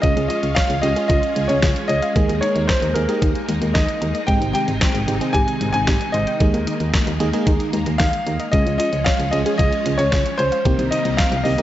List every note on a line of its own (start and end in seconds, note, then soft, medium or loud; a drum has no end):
0.00 0.15 C#2 loud
0.00 8.49 G#3 medium
0.00 0.55 G#3 medium
0.00 0.11 G#3 medium
0.00 2.14 C#4 medium
0.00 0.55 C#4 medium
0.00 2.14 F4 medium
0.00 0.55 F4 medium
0.00 0.55 G#4 medium
0.00 0.27 D#5 loud
0.00 kick loud
0.00 closed hi-hat medium
0.17 0.28 C#2 loud
0.17 0.24 C#4 medium
0.17 closed hi-hat soft
0.28 0.37 F4 medium
0.28 0.54 D#5 medium
0.28 closed hi-hat medium
0.43 0.55 C#2 medium
0.43 closed hi-hat medium
0.55 0.64 C#5 loud
0.55 0.83 F5 loud
0.55 kick loud
0.55 snare loud
0.55 closed hi-hat medium
0.70 0.81 C#2 medium
0.70 closed hi-hat medium
0.82 0.95 C#2 loud
0.82 0.92 G#3 medium
0.82 0.92 C#4 medium
0.82 0.92 F4 medium
0.82 0.92 G4 medium
0.82 1.07 D#5 medium
0.82 closed hi-hat medium
0.96 1.65 G#3 medium
0.96 1.65 C#4 medium
0.96 1.65 F4 medium
0.96 1.65 G#4 medium
0.96 1.04 G#4 medium
0.96 closed hi-hat medium
1.08 1.21 C#2 loud
1.08 1.17 F4 medium
1.08 1.50 D#5 loud
1.08 kick loud
1.08 closed hi-hat medium
1.23 closed hi-hat soft
1.36 1.48 C#2 loud
1.36 1.44 G#3 medium
1.36 closed hi-hat medium
1.48 1.61 C#2 loud
1.48 1.57 C#4 medium
1.48 1.90 C#5 medium
1.48 closed hi-hat medium
1.62 1.74 C#2 loud
1.62 1.70 F4 medium
1.62 kick loud
1.62 snare loud
1.62 closed hi-hat medium
1.76 closed hi-hat medium
1.88 2.01 C#2 loud
1.88 1.97 C#5 medium
1.88 2.43 D#5 loud
1.88 closed hi-hat medium
2.02 2.10 F5 medium
2.02 closed hi-hat soft
2.16 2.27 D#2 loud
2.16 2.23 G#3 medium
2.16 2.67 G#3 medium
2.16 4.26 A#3 medium
2.16 2.67 A#3 medium
2.16 6.36 D#4 medium
2.16 2.67 D#4 medium
2.16 2.67 G#4 medium
2.16 kick loud
2.16 closed hi-hat medium
2.29 2.41 D#2 medium
2.29 2.36 A#3 medium
2.29 closed hi-hat soft
2.41 2.50 D#4 medium
2.41 2.69 C#5 medium
2.41 closed hi-hat medium
2.56 2.67 D#2 loud
2.56 closed hi-hat soft
2.68 2.76 A#4 medium
2.68 2.93 C5 medium
2.68 kick loud
2.68 snare loud
2.68 closed hi-hat medium
2.82 2.94 D#2 medium
2.82 closed hi-hat medium
2.94 3.07 D#2 medium
2.94 3.04 G#3 medium
2.94 3.04 A#3 medium
2.94 3.04 D#4 medium
2.94 3.04 G#4 medium
2.94 3.44 A#4 medium
2.94 closed hi-hat medium
3.09 3.77 G#3 medium
3.09 3.77 A#3 medium
3.09 3.77 D#4 medium
3.09 3.77 G4 medium
3.09 3.16 G#4 medium
3.09 closed hi-hat medium
3.22 3.34 D#2 loud
3.22 3.29 D#4 medium
3.22 kick loud
3.22 closed hi-hat medium
3.35 closed hi-hat soft
3.48 3.60 D#2 loud
3.48 3.56 G#3 medium
3.48 closed hi-hat medium
3.62 3.73 D#2 loud
3.62 3.69 A#3 medium
3.62 closed hi-hat medium
3.74 3.87 D#2 medium
3.74 3.82 D#4 medium
3.74 4.29 D#5 medium
3.74 kick loud
3.74 snare loud
3.74 closed hi-hat medium
3.88 closed hi-hat medium
4.01 4.13 D#2 loud
4.01 4.09 A#4 medium
4.01 closed hi-hat medium
4.15 4.22 D#5 medium
4.15 closed hi-hat soft
4.27 4.40 G#1 loud
4.27 6.38 C3 medium
4.27 8.49 D#3 medium
4.27 4.35 G#3 medium
4.27 4.80 G#3 medium
4.27 4.80 C4 medium
4.27 4.80 D#4 medium
4.27 4.80 G4 medium
4.27 4.52 G5 loud
4.27 kick loud
4.27 closed hi-hat medium
4.41 4.53 G#1 loud
4.41 4.49 C4 medium
4.41 closed hi-hat soft
4.53 4.62 G4 medium
4.53 5.36 G5 loud
4.53 closed hi-hat medium
4.68 4.80 G#1 loud
4.68 closed hi-hat medium
4.81 4.89 C5 medium
4.81 kick loud
4.81 snare loud
4.81 closed hi-hat medium
4.95 5.06 G#1 loud
4.95 closed hi-hat medium
5.08 5.19 G#1 loud
5.08 5.16 G#3 medium
5.08 5.16 C4 medium
5.08 5.16 D#4 medium
5.08 5.16 G4 medium
5.08 closed hi-hat medium
5.21 5.89 G#3 medium
5.21 5.90 C4 medium
5.21 5.90 D#4 medium
5.21 5.28 G#4 medium
5.21 5.90 G#4 medium
5.21 closed hi-hat medium
5.33 5.46 G#1 loud
5.33 5.42 G4 medium
5.33 5.71 G#5 loud
5.33 kick loud
5.33 closed hi-hat medium
5.48 closed hi-hat soft
5.61 5.72 G#1 loud
5.61 5.68 G#3 medium
5.61 closed hi-hat medium
5.73 5.86 G#1 medium
5.73 5.82 C4 medium
5.73 6.14 G#5 loud
5.73 closed hi-hat medium
5.87 5.99 G#1 loud
5.87 5.95 G4 medium
5.87 kick loud
5.87 snare loud
5.87 closed hi-hat medium
6.01 closed hi-hat medium
6.12 6.26 G#1 loud
6.12 6.21 C5 medium
6.12 7.15 D#5 loud
6.12 closed hi-hat medium
6.27 6.35 G5 medium
6.27 closed hi-hat medium
6.40 6.52 D#2 loud
6.40 6.48 G#3 medium
6.40 6.92 G#3 medium
6.40 6.92 A#3 medium
6.40 8.51 A#3 medium
6.40 6.92 D#4 medium
6.40 6.92 G#4 medium
6.40 kick loud
6.40 closed hi-hat medium
6.54 6.65 D#2 loud
6.54 6.61 A#3 medium
6.54 closed hi-hat soft
6.67 6.75 D#4 medium
6.67 closed hi-hat medium
6.80 6.92 D#2 medium
6.80 closed hi-hat medium
6.94 7.01 A#4 medium
6.94 kick loud
6.94 snare loud
6.94 closed hi-hat medium
7.07 7.18 D#2 medium
7.07 closed hi-hat medium
7.20 7.32 D#2 loud
7.20 7.29 G#3 medium
7.20 7.29 A#3 medium
7.20 7.29 D#4 medium
7.20 7.29 G#4 loud
7.20 closed hi-hat medium
7.33 8.02 G#3 medium
7.33 8.02 A#3 medium
7.33 8.02 D#4 medium
7.33 7.41 G#4 medium
7.33 8.02 G#4 loud
7.33 closed hi-hat medium
7.47 7.58 D#2 loud
7.47 7.54 D#4 medium
7.47 kick loud
7.47 closed hi-hat medium
7.60 closed hi-hat soft
7.73 7.85 D#2 loud
7.73 7.81 G#3 medium
7.73 closed hi-hat medium
7.86 7.98 D#2 loud
7.86 7.94 A#3 medium
7.86 closed hi-hat medium
7.98 8.11 D#2 loud
7.98 8.07 D#4 medium
7.98 8.54 F5 loud
7.98 kick loud
7.98 snare loud
7.98 closed hi-hat medium
8.13 closed hi-hat medium
8.27 8.38 D#2 loud
8.27 8.34 A#4 medium
8.27 closed hi-hat medium
8.40 8.47 D#5 medium
8.40 closed hi-hat soft
8.52 8.64 C#2 loud
8.52 10.63 F3 medium
8.52 10.63 G#3 medium
8.52 8.60 G#3 medium
8.52 9.04 G#3 medium
8.52 10.63 C#4 medium
8.52 9.04 C#4 medium
8.52 9.04 F4 medium
8.52 9.04 G#4 medium
8.52 8.76 D#5 loud
8.52 kick loud
8.52 closed hi-hat medium
8.66 8.78 C#2 loud
8.66 8.74 C#4 medium
8.66 closed hi-hat soft
8.78 8.87 F4 medium
8.78 9.06 D#5 loud
8.78 closed hi-hat medium
8.93 9.04 C#2 loud
8.93 closed hi-hat medium
9.04 9.13 C#5 medium
9.04 9.30 F5 loud
9.04 kick loud
9.04 snare loud
9.04 closed hi-hat medium
9.19 9.31 C#2 medium
9.19 closed hi-hat medium
9.31 9.44 C#2 loud
9.31 9.41 G#3 medium
9.31 9.41 C#4 medium
9.31 9.41 F4 medium
9.31 9.41 G#4 medium
9.31 9.37 D#5 loud
9.31 closed hi-hat medium
9.46 10.14 G#3 medium
9.46 10.14 C#4 medium
9.46 10.14 F4 medium
9.46 10.14 G#4 medium
9.46 9.53 G#4 medium
9.46 closed hi-hat medium
9.58 9.71 C#2 loud
9.58 9.67 F4 medium
9.58 9.99 D#5 loud
9.58 kick loud
9.58 closed hi-hat medium
9.73 closed hi-hat soft
9.86 9.97 C#2 loud
9.86 9.93 G#3 medium
9.86 closed hi-hat medium
9.98 10.11 C#2 loud
9.98 10.06 C#4 medium
9.98 10.39 C#5 loud
9.98 closed hi-hat medium
10.12 10.24 C#2 loud
10.12 10.20 F4 medium
10.12 kick loud
10.12 snare loud
10.12 closed hi-hat medium
10.26 closed hi-hat medium
10.38 10.50 C#2 loud
10.38 10.93 C5 loud
10.38 10.46 C#5 medium
10.38 closed hi-hat medium
10.52 10.60 F5 medium
10.52 closed hi-hat soft
10.65 10.77 C2 loud
10.65 11.62 C3 medium
10.65 11.62 D#3 medium
10.65 11.62 G3 medium
10.65 11.62 A#3 medium
10.65 10.73 A#3 medium
10.65 11.17 A#3 medium
10.65 11.17 C4 medium
10.65 11.62 D#4 medium
10.65 11.17 D#4 medium
10.65 11.17 G4 medium
10.65 kick loud
10.65 closed hi-hat medium
10.79 10.90 C2 loud
10.79 10.86 C4 medium
10.79 closed hi-hat soft
10.91 10.99 D#4 medium
10.91 11.19 D#5 medium
10.91 closed hi-hat medium
11.05 11.17 C2 medium
11.05 closed hi-hat medium
11.17 11.26 C5 medium
11.17 11.35 F5 medium
11.17 kick loud
11.17 snare loud
11.17 closed hi-hat medium
11.32 11.43 C2 loud
11.32 closed hi-hat medium
11.37 11.44 F5 medium
11.44 11.57 C2 loud
11.44 11.54 A#3 medium
11.44 11.54 C4 medium
11.44 11.54 D#4 medium
11.44 11.54 G4 medium
11.44 11.62 D#5 medium
11.44 open hi-hat medium
11.58 11.62 A#3 medium
11.58 11.62 C4 medium
11.58 11.62 D#4 medium
11.58 11.62 G4 medium
11.58 11.62 A#4 medium
11.58 closed hi-hat medium